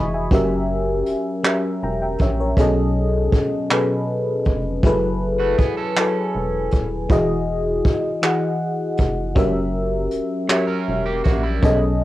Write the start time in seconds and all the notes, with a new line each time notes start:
Already playing: F1 E3 E4 F#4 G#4 D#5 E5 G#5 B5 C#6 D#6
0.14 E5 G#5
0.31 F#1 F#3 C#4 G4 A#4 E5, kick, closed hi-hat
1.06 E1, closed hi-hat
1.43 F#3 C#4 G4 A#4 E5, clap, closed hi-hat
1.83 E1 G5 A#5
2.02 E5 G5
2.18 A#1 C#5 E5, kick, closed hi-hat
2.40 A#4 C#5
2.57 B1 B2 F#3 C#4 G#4 A4 D#5, kick, closed hi-hat
3.32 F1, kick, closed hi-hat
3.70 B2 F#3 C#4 G#4 A4 B4, clap, closed hi-hat
4.45 F1, kick, closed hi-hat
4.83 F#1 F#3 E4 G#4 A4 B4, kick, closed hi-hat
5.40 A3 F#4
5.58 E1 B3 G#4, kick, closed hi-hat
5.77 C#4 A4
5.96 F#3 E4 A4 B4 G#5, clap, closed hi-hat
6.35 E1
6.71 D#1, kick, closed hi-hat
7.09 E1 E3 E4 F#4 G#4 D#5, kick, closed hi-hat
7.85 F1, kick, closed hi-hat
8.22 E3 E4 F#4 G#4 F#5, clap, closed hi-hat
8.97 F1, kick, closed hi-hat
9.35 F#1 F#3 C#4 G4 A#4 E5, kick, closed hi-hat
10.11 E1, closed hi-hat
10.49 F#3 C#4 E4 G4 A#4 C#5 E5, clap, closed hi-hat
10.67 C#4 A#4
10.88 E1
11.05 A#3 G4
11.24 A#1 A#3 F#4, kick, closed hi-hat
11.43 G3 E4
11.62 B1 B2 F#3 C#4 G#4 A4 D#5, kick, closed hi-hat